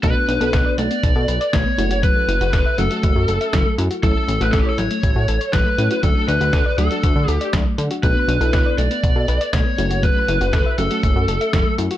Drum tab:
HH |x-xxx-xxx-xxx-xx|x-xxx-xxx-xxx-xx|x-xxx-xxx-xxx-xx|x-xxx-xxx-xxx-xx|
SD |----o-------o---|----o-------o---|----o-------o---|----o-------o---|
BD |o---o---o---o---|o---o---o---o---|o---o---o---o---|o---o---o---o---|

HH |x-xxx-xxx-xxx-xx|x-xxx-xxx-xxx-xx|
SD |----o-------o---|----o-------o---|
BD |o---o---o---o---|o---o---o---o---|